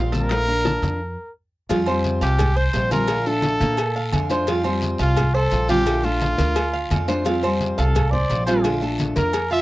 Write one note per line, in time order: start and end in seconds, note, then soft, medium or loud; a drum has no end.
0.00 0.77 A#1 medium
0.00 0.13 F3 soft
0.00 0.13 G3 medium
0.00 0.12 C4 medium
0.00 0.11 F4 medium
0.00 0.12 F4 medium
0.12 0.30 G3 medium
0.12 0.30 C4 medium
0.12 0.29 F4 medium
0.12 1.31 A#4 loud
0.12 0.47 A5 medium
0.12 high conga medium
0.12 high timbale medium
0.12 short guiro medium
0.12 maracas medium
0.29 0.48 D3 medium
0.29 0.48 A3 medium
0.29 0.47 D4 medium
0.29 0.47 F4 medium
0.29 high bongo medium
0.29 high timbale medium
0.29 long guiro medium
0.29 maracas medium
0.47 1.00 D4 medium
0.47 0.99 F4 medium
0.47 0.65 A#4 medium
0.47 high bongo soft
0.47 high conga soft
0.47 maracas soft
0.65 0.99 A5 medium
0.65 high bongo medium
0.65 high conga loud
0.65 high timbale medium
0.65 short guiro medium
0.65 maracas soft
0.82 1.15 F2 medium
0.82 high conga loud
0.82 high timbale medium
0.82 short guiro medium
0.82 maracas medium
1.69 2.18 F2 loud
1.69 1.86 F3 medium
1.69 1.87 G3 medium
1.69 1.87 C4 medium
1.69 1.86 F4 medium
1.69 cowbell loud
1.69 high conga soft
1.69 low agogo medium
1.69 long guiro medium
1.69 maracas medium
1.86 2.38 G3 medium
1.86 2.39 C4 medium
1.86 2.40 F4 medium
1.86 2.21 C5 medium
1.86 high conga soft
1.86 low agogo loud
1.86 maracas soft
2.04 cowbell medium
2.04 high conga medium
2.04 short guiro medium
2.04 maracas soft
2.21 2.70 C2 medium
2.21 2.58 G4 medium
2.21 2.55 F5 medium
2.21 cowbell medium
2.21 low agogo medium
2.21 short guiro medium
2.21 maracas medium
2.38 muted steel-string acoustic guitar stroke medium
2.38 cowbell loud
2.38 high conga soft
2.38 low conga medium
2.38 low agogo loud
2.38 long guiro medium
2.38 maracas loud
2.56 2.90 C5 medium
2.56 2.91 C5 loud
2.56 maracas soft
2.73 3.55 A#1 medium
2.73 2.91 F3 medium
2.73 2.91 G3 medium
2.73 2.91 C4 medium
2.73 2.90 F4 medium
2.73 cowbell medium
2.73 high conga soft
2.73 low timbale medium
2.73 low agogo medium
2.73 short guiro medium
2.73 maracas soft
2.91 3.09 G3 medium
2.91 3.08 C4 medium
2.91 3.08 F4 medium
2.91 3.25 F4 loud
2.91 3.28 A#4 loud
2.91 cowbell medium
2.91 high conga medium
2.91 low agogo medium
2.91 short guiro medium
2.91 maracas medium
3.08 3.26 D3 medium
3.08 3.26 A3 medium
3.08 3.25 D4 medium
3.08 3.25 F4 medium
3.08 cowbell loud
3.08 low agogo loud
3.08 long guiro medium
3.08 maracas medium
3.26 3.78 A3 medium
3.26 3.78 D4 medium
3.26 3.79 F4 medium
3.26 3.60 A4 medium
3.26 4.31 A4 loud
3.26 high conga soft
3.26 maracas soft
3.42 cowbell medium
3.42 high conga loud
3.42 low agogo medium
3.42 short guiro medium
3.42 maracas soft
3.60 4.09 A#2 medium
3.60 3.95 A#3 medium
3.60 cowbell medium
3.60 high conga loud
3.60 short guiro medium
3.60 maracas medium
3.77 muted steel-string acoustic guitar stroke medium
3.77 cowbell loud
3.77 low agogo loud
3.77 long guiro medium
3.77 maracas medium
3.96 4.29 F5 medium
3.96 high conga soft
3.96 maracas soft
4.12 4.94 F2 loud
4.12 4.29 D3 medium
4.12 4.30 A3 medium
4.12 4.29 D4 medium
4.12 4.29 F4 medium
4.12 cowbell medium
4.12 high conga medium
4.12 low agogo loud
4.12 short guiro medium
4.12 maracas soft
4.29 4.47 A3 medium
4.29 4.47 D4 medium
4.29 4.47 F4 medium
4.29 4.47 C5 medium
4.29 cowbell medium
4.29 low agogo medium
4.29 short guiro medium
4.29 maracas medium
4.47 4.64 F3 medium
4.47 4.64 G3 medium
4.47 4.64 C4 medium
4.47 4.63 F4 medium
4.47 4.65 F4 medium
4.47 cowbell loud
4.47 high conga soft
4.47 low agogo medium
4.47 long guiro medium
4.47 maracas medium
4.64 5.16 G3 medium
4.64 5.16 C4 medium
4.64 5.17 F4 medium
4.64 4.99 C5 medium
4.64 high conga soft
4.64 low agogo loud
4.64 maracas soft
4.82 cowbell medium
4.82 high conga medium
4.82 short guiro medium
4.82 maracas soft
4.98 5.48 C2 loud
4.98 5.36 F4 loud
4.98 5.33 F5 medium
4.98 cowbell medium
4.98 low agogo medium
4.98 short guiro medium
4.98 maracas medium
5.17 muted steel-string acoustic guitar stroke medium
5.17 cowbell loud
5.17 high conga soft
5.17 low conga medium
5.17 low agogo loud
5.17 long guiro medium
5.17 maracas loud
5.34 5.69 A4 loud
5.34 5.68 C5 medium
5.34 maracas soft
5.51 6.33 A#1 medium
5.51 5.68 F3 medium
5.51 5.68 G3 medium
5.51 5.69 C4 medium
5.51 5.68 F4 medium
5.51 cowbell medium
5.51 high conga soft
5.51 low agogo medium
5.51 short guiro medium
5.51 maracas soft
5.68 5.86 G3 medium
5.68 5.86 C4 medium
5.68 6.03 F4 medium
5.68 5.85 F4 medium
5.68 6.06 G4 loud
5.68 cowbell medium
5.68 high conga medium
5.68 low agogo medium
5.68 short guiro medium
5.68 maracas medium
5.85 6.03 D3 medium
5.85 6.03 A3 medium
5.85 6.03 D4 medium
5.85 6.02 F4 medium
5.85 cowbell loud
5.85 high conga soft
5.85 low agogo loud
5.85 long guiro medium
5.85 maracas medium
6.03 6.56 A3 medium
6.03 6.55 D4 medium
6.03 6.56 F4 medium
6.03 7.09 F4 loud
6.03 6.37 A4 medium
6.03 high conga soft
6.03 maracas soft
6.21 cowbell medium
6.21 high conga loud
6.21 low agogo medium
6.21 short guiro medium
6.21 maracas soft
6.38 6.87 D2 loud
6.38 6.72 A#4 medium
6.38 cowbell medium
6.38 high conga loud
6.38 short guiro medium
6.38 maracas medium
6.56 muted steel-string acoustic guitar stroke medium
6.56 cowbell loud
6.56 high conga soft
6.56 low agogo loud
6.56 long guiro medium
6.56 maracas loud
6.73 7.07 F5 medium
6.73 high conga soft
6.73 maracas soft
6.91 7.72 F2 loud
6.91 7.07 D3 medium
6.91 7.08 A3 medium
6.91 7.07 D4 medium
6.91 7.07 F4 medium
6.91 cowbell medium
6.91 high conga medium
6.91 low agogo loud
6.91 short guiro medium
6.91 maracas soft
7.07 7.24 A3 medium
7.07 7.25 D4 medium
7.07 7.24 F4 medium
7.07 7.25 C5 medium
7.07 cowbell medium
7.07 high conga soft
7.07 low agogo medium
7.07 short guiro medium
7.07 maracas medium
7.25 7.42 F3 medium
7.25 7.42 G3 medium
7.25 7.42 C4 medium
7.25 7.42 F4 medium
7.25 7.43 F4 medium
7.25 cowbell loud
7.25 high conga soft
7.25 low agogo medium
7.25 long guiro medium
7.25 maracas medium
7.42 7.94 G3 medium
7.42 7.94 C4 medium
7.42 7.95 F4 medium
7.42 7.77 C5 medium
7.42 high conga soft
7.42 low agogo loud
7.42 maracas soft
7.61 cowbell medium
7.61 high conga medium
7.61 short guiro medium
7.61 maracas soft
7.78 8.26 C2 medium
7.78 8.12 A4 medium
7.78 8.11 F5 medium
7.78 cowbell medium
7.78 high conga soft
7.78 low agogo medium
7.78 short guiro medium
7.78 maracas medium
7.95 muted steel-string acoustic guitar stroke medium
7.95 cowbell loud
7.95 high conga soft
7.95 low conga medium
7.95 low agogo loud
7.95 long guiro medium
7.95 maracas medium
8.11 8.46 C5 medium
8.11 8.46 D5 loud
8.11 high conga soft
8.11 low conga medium
8.11 maracas soft
8.30 9.11 A#1 loud
8.30 8.47 F3 medium
8.30 8.47 G3 medium
8.30 8.47 C4 medium
8.30 8.46 F4 medium
8.30 cowbell medium
8.30 low agogo medium
8.30 short guiro medium
8.30 maracas soft
8.46 8.64 G3 medium
8.46 8.64 C4 medium
8.46 8.64 F4 medium
8.46 8.81 F4 medium
8.46 8.63 C5 medium
8.46 cowbell medium
8.46 low agogo medium
8.46 short guiro medium
8.46 maracas medium
8.64 8.81 D3 medium
8.64 8.81 A3 medium
8.64 8.81 D4 medium
8.64 8.80 F4 medium
8.64 cowbell loud
8.64 high conga soft
8.64 low agogo loud
8.64 long guiro medium
8.64 maracas medium
8.81 9.33 A3 medium
8.81 9.33 D4 medium
8.81 9.34 F4 medium
8.81 9.15 A4 medium
8.81 high conga soft
8.81 maracas soft
8.98 cowbell medium
8.98 high conga loud
8.98 low agogo medium
8.98 short guiro medium
8.98 maracas soft
9.16 9.62 F2 medium
9.16 9.50 A#4 medium
9.16 9.49 A#4 medium
9.16 cowbell medium
9.16 high conga loud
9.16 short guiro medium
9.16 maracas medium
9.33 muted steel-string acoustic guitar stroke medium
9.33 cowbell loud
9.33 high conga soft
9.33 low agogo loud
9.33 long guiro medium
9.33 maracas medium
9.51 9.62 F4 medium
9.51 9.62 E5 loud
9.51 high conga soft
9.51 maracas soft